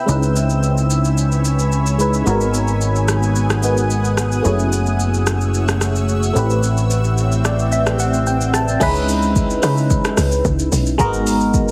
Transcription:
0.00 0.10 E5 medium
0.00 0.10 G5 medium
0.00 0.11 B5 medium
0.00 2.23 E6 medium
0.06 2.23 C#2 medium
0.06 1.94 G#3 medium
0.06 1.95 C#4 medium
0.06 1.96 D#4 medium
0.06 1.96 E4 medium
0.06 2.25 C#5 medium
0.06 4.41 G#5 medium
0.06 2.25 B5 medium
0.06 shaker medium
0.11 1.97 B4 medium
0.23 shaker medium
0.36 shaker loud
0.50 shaker soft
0.63 shaker medium
0.78 shaker soft
0.90 shaker medium
1.05 shaker medium
1.18 shaker medium
1.32 shaker soft
1.45 shaker medium
1.59 shaker medium
1.72 shaker medium
1.86 shaker medium
1.98 2.23 G#3 medium
1.98 2.26 C#4 soft
1.98 2.26 D#4 medium
1.98 2.27 E4 medium
1.98 2.27 B4 medium
1.98 shaker medium
2.14 shaker soft
2.24 4.41 G#1 medium
2.24 3.59 G#3 medium
2.24 3.60 B3 medium
2.24 4.43 B3 medium
2.24 3.60 D#4 medium
2.24 4.43 F#5 medium
2.24 4.43 D#6 medium
2.24 shaker medium
2.28 3.61 F#4 medium
2.28 3.62 A#4 medium
2.41 shaker medium
2.54 shaker medium
2.68 shaker soft
2.81 shaker medium
2.96 shaker soft
3.08 cross-stick medium
3.08 shaker medium
3.23 shaker medium
3.36 shaker medium
3.50 cross-stick medium
3.50 shaker soft
3.62 4.44 G#3 medium
3.62 4.45 B3 soft
3.62 4.45 D#4 soft
3.62 4.45 F#4 soft
3.62 4.46 B4 medium
3.62 shaker loud
3.77 shaker medium
3.90 shaker medium
4.05 shaker medium
4.17 cross-stick medium
4.17 shaker medium
4.32 shaker soft
4.42 6.32 F#1 medium
4.42 6.31 A3 medium
4.42 6.31 C#4 medium
4.42 6.32 E4 medium
4.42 6.34 C#5 medium
4.42 8.77 E5 medium
4.42 6.34 F#5 medium
4.42 8.77 E6 medium
4.42 shaker medium
4.46 6.33 F#4 medium
4.46 6.33 G#4 medium
4.59 shaker medium
4.73 shaker medium
4.86 shaker soft
5.00 shaker medium
5.14 shaker soft
5.27 cross-stick medium
5.27 shaker medium
5.41 shaker soft
5.54 shaker medium
5.68 cross-stick medium
5.68 shaker soft
5.81 cross-stick medium
5.81 shaker loud
5.96 shaker medium
6.09 shaker medium
6.23 shaker medium
6.33 8.77 A1 medium
6.33 8.49 A3 medium
6.33 8.49 C4 medium
6.33 8.79 C4 medium
6.33 8.50 E4 medium
6.33 8.79 G5 medium
6.33 shaker medium
6.37 8.51 G4 medium
6.37 8.51 B4 medium
6.50 shaker soft
6.63 shaker medium
6.77 shaker medium
6.91 shaker medium
7.04 shaker soft
7.18 shaker medium
7.32 shaker soft
7.45 7.70 D5 medium
7.45 cross-stick medium
7.45 shaker medium
7.59 shaker soft
7.72 7.98 E5 medium
7.72 shaker medium
7.86 cross-stick medium
7.86 shaker soft
7.99 8.25 F#5 medium
7.99 shaker loud
8.14 shaker medium
8.27 8.52 G5 medium
8.27 shaker medium
8.41 shaker medium
8.54 8.79 A5 medium
8.54 cross-stick medium
8.54 shaker medium
8.68 shaker soft
8.80 9.59 C#2 loud
8.80 9.47 G#3 loud
8.80 9.47 C#4 loud
8.80 9.47 D#4 loud
8.80 9.48 E4 loud
8.80 9.48 B4 loud
8.80 kick loud
8.80 crash loud
8.80 shaker medium
8.95 shaker medium
9.09 open hi-hat medium
9.09 shaker loud
9.22 shaker medium
9.36 kick loud
9.36 shaker medium
9.50 shaker medium
9.62 10.00 C#3 loud
9.62 10.50 G#3 medium
9.62 10.50 C#4 medium
9.62 10.51 D#4 medium
9.62 10.51 E4 medium
9.62 10.51 B4 medium
9.62 cross-stick medium
9.62 open hi-hat medium
9.62 shaker medium
9.77 shaker medium
9.90 kick loud
9.90 shaker medium
10.05 cross-stick loud
10.05 shaker medium
10.17 10.42 C#2 medium
10.17 cross-stick medium
10.17 open hi-hat medium
10.17 shaker loud
10.32 shaker medium
10.45 10.69 C#2 loud
10.45 kick loud
10.45 shaker medium
10.59 shaker medium
10.72 10.97 B1 medium
10.72 open hi-hat medium
10.72 shaker loud
10.86 shaker medium
10.98 11.71 G#1 loud
10.98 11.65 G#3 loud
10.98 11.06 A#3 medium
10.98 11.65 D#4 loud
10.98 11.66 F#4 loud
10.98 11.66 A#4 loud
10.98 kick loud
10.98 shaker medium
11.05 11.68 B3 loud
11.13 shaker medium
11.27 open hi-hat medium
11.27 shaker loud
11.40 shaker soft
11.54 kick loud
11.54 shaker medium
11.68 shaker soft

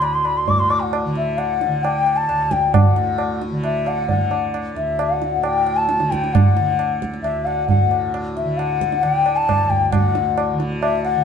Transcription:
0.00 2.28 D2 medium
0.00 0.44 A2 soft
0.00 1.05 D3 medium
0.00 0.15 B5 medium
0.00 tabla na medium
0.14 0.27 C6 medium
0.25 0.39 B5 medium
0.25 tabla na medium
0.37 0.51 C6 medium
0.44 2.90 A2 medium
0.44 tabla tin medium
0.44 tabla ge medium
0.49 0.61 D6 medium
0.59 0.72 C6 medium
0.70 0.81 D6 medium
0.70 tabla na soft
0.80 0.94 F#5 medium
0.80 0.85 G5 soft
0.93 tabla na medium
1.05 1.66 D3 medium
1.16 1.40 E5 medium
1.16 tabla te medium
1.38 1.85 F#5 medium
1.38 tabla na medium
1.61 tabla te medium
1.66 3.51 D3 medium
1.83 2.18 G5 medium
1.83 tabla na medium
2.07 tabla na soft
2.17 2.53 A5 medium
2.28 4.74 D2 medium
2.28 tabla na medium
2.51 2.75 G5 medium
2.51 tabla ke soft
2.74 3.41 F#5 medium
2.74 tabla na medium
2.74 tabla ge medium
2.90 5.37 A2 medium
2.96 tabla te medium
3.18 tabla na medium
3.42 tabla te medium
3.51 4.13 D3 medium
3.64 3.89 E5 medium
3.64 tabla na medium
3.86 4.09 F#5 medium
3.86 tabla na medium
4.09 4.51 F#5 medium
4.09 tabla tin medium
4.09 tabla ge medium
4.13 5.98 D3 medium
4.31 tabla na medium
4.54 tabla na medium
4.75 7.21 D2 medium
4.75 5.02 E5 medium
4.75 tabla te medium
4.99 5.45 F#5 medium
4.99 tabla na medium
5.22 tabla te medium
5.37 7.82 A2 medium
5.44 5.79 G5 medium
5.44 tabla na medium
5.67 tabla na medium
5.77 6.12 A5 medium
5.89 tabla te medium
5.98 6.58 D3 medium
5.98 tabla te medium
6.11 6.35 G5 medium
6.11 tabla ke medium
6.24 tabla te soft
6.33 7.01 F#5 medium
6.33 tabla na medium
6.33 tabla ge medium
6.57 8.43 D3 medium
6.57 tabla te medium
6.79 tabla na medium
7.02 tabla ke medium
7.14 tabla te medium
7.21 9.63 D2 medium
7.21 7.47 E5 medium
7.21 tabla na medium
7.45 7.68 F#5 medium
7.45 tabla na medium
7.69 8.10 F#5 medium
7.69 tabla tin medium
7.69 tabla ge medium
7.82 9.91 A2 medium
7.91 tabla na medium
8.14 tabla na medium
8.37 8.59 E5 medium
8.37 tabla te medium
8.43 9.03 D3 soft
8.57 9.04 F#5 medium
8.57 tabla na medium
8.81 tabla ke medium
8.92 tabla te medium
9.02 10.54 D3 medium
9.02 9.38 G5 medium
9.02 tabla na medium
9.26 tabla na medium
9.36 9.71 A5 medium
9.49 tabla na medium
9.49 tabla ge medium
9.64 11.24 D2 medium
9.70 9.85 G5 medium
9.70 tabla ge soft
9.85 9.93 G5 medium
9.91 11.24 A2 medium
9.91 10.59 F#5 medium
9.91 tabla na medium
9.91 tabla ge medium
10.15 tabla te medium
10.38 tabla na medium
10.54 11.15 D3 medium
10.60 tabla te medium
10.82 11.03 E5 medium
10.82 tabla na medium
11.04 11.24 F#5 medium
11.04 tabla na medium
11.15 11.24 D3 medium

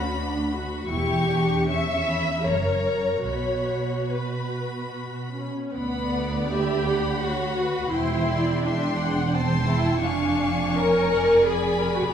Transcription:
0.00 0.86 D2 medium
0.00 0.19 C#4 soft
0.00 0.51 F#4 medium
0.00 0.90 B5 soft
0.18 0.54 D4 medium
0.53 0.90 F#4 medium
0.89 1.66 E1 soft
0.89 2.43 E2 medium
0.89 1.29 E4 soft
0.89 1.66 G4 medium
0.89 1.67 C#6 medium
1.29 1.69 D4 medium
1.69 2.46 C#4 soft
1.69 2.46 E5 medium
1.69 2.07 C#6 soft
2.08 2.46 B5 soft
2.45 3.21 F#1 soft
2.45 3.25 F#2 soft
2.45 3.25 A#4 soft
2.45 3.24 C#5 medium
2.45 3.25 A#5 soft
3.25 4.05 B1 soft
3.25 5.49 B2 soft
3.25 5.30 F#4 soft
3.25 4.07 C#5 medium
3.25 4.07 B5 soft
4.09 4.93 B4 soft
4.09 5.50 B5 soft
5.34 5.71 C#4 soft
5.73 7.89 D2 medium
5.73 6.52 B3 medium
5.73 7.21 D5 soft
5.73 6.48 F#5 soft
5.73 6.48 B5 soft
6.51 7.24 G4 medium
6.51 6.89 E5 soft
6.51 7.90 B5 medium
6.89 7.91 F#5 soft
7.23 7.93 F#4 medium
7.23 7.59 C#5 soft
7.59 7.93 B4 soft
7.91 9.97 E1 soft
7.91 9.97 E2 medium
7.91 8.62 E4 medium
7.91 8.27 C5 soft
7.91 8.63 G5 soft
7.91 8.62 C6 soft
8.29 8.63 D5 soft
8.63 9.33 D4 medium
8.63 8.99 E5 medium
8.63 9.32 G5 soft
8.63 9.32 C6 soft
8.99 9.33 F#5 soft
9.33 9.67 C4 medium
9.33 10.02 G5 soft
9.33 10.02 A5 soft
9.33 10.01 C6 medium
9.67 10.02 E4 medium
10.01 12.08 F1 medium
10.01 12.08 F2 medium
10.01 10.76 D4 medium
10.01 10.77 F5 soft
10.01 12.09 G#5 medium
10.01 11.44 C#6 soft
10.76 11.46 A#4 medium
10.76 11.13 C#5 medium
11.12 12.12 D5 medium
11.46 11.80 G#4 medium
11.46 12.11 B5 medium
11.80 11.88 A#4 medium
11.87 11.96 G#4 medium
11.96 12.04 F#4 medium
12.04 12.12 G#4 soft

